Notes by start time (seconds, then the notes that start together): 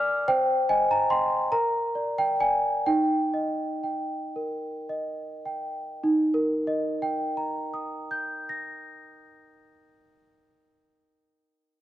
Already playing: A#4 D5 G#5 D6 D#6 F6
0.28 C5 G5
0.69 D#5 G#5
0.91 A#5
1.10 D#5 G5 C6
1.52 A#4 A#5
1.95 D5
2.18 G5
2.40 D5 G#5
2.86 D#4 G5
3.34 D#5
3.83 G5
4.36 A#4
4.89 D#5
5.46 G5
6.04 D#4
6.34 A#4
6.67 D#5
7.02 G5
7.37 A#5
7.74 D#6
8.11 G6
8.49 A#6